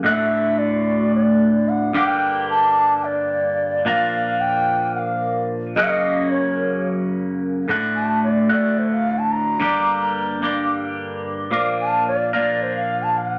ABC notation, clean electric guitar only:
X:1
M:7/8
L:1/8
Q:1/4=110
K:G
V:1 name="Clean electric guitar"
[D,,A,,D,A,F]6- [D,,A,,D,A,F] | [G,,D,G,_B,DG]6- [G,,D,G,B,DG] | [_B,,=F,_B,D=F_B]6- [B,,F,B,DFB] | [F,,^C,F,^A,^CF]6- [F,,C,F,A,CF] |
[D,,A,,D,A,F]3 [D,,A,,D,A,F]4 | [G,,D,G,_B,DG]3 [G,,D,G,B,DG]4 | [_B,,=F,_B,D=F_B]3 [B,,F,B,DFB]4 |]